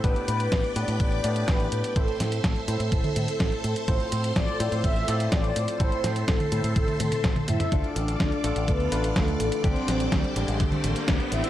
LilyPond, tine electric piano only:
\new Staff \with { instrumentName = "Tine electric piano" } { \time 4/4 \key a \minor \tempo 4 = 125 <a, b d' g' b'>4. <a, b d' g' b'>4 <a, b d' g' d''>4. | <a, c' e' a' c''>4. <a, c' e' a' c''>2~ <a, c' e' a' c''>8 | <a, c' f' a' c''>4. <a, c' f' a' c''>4 <a, c' f' a' d''>4. | <a, c' e' a' c''>4. <a, c' e' a' c''>2~ <a, c' e' a' c''>8 |
<d a d' f' a'>4. <d a d' f' a'>4 <d a d' f' b'>4. | <d g c' d' g'>4. <d g c' d' g'>2~ <d g c' d' g'>8 | }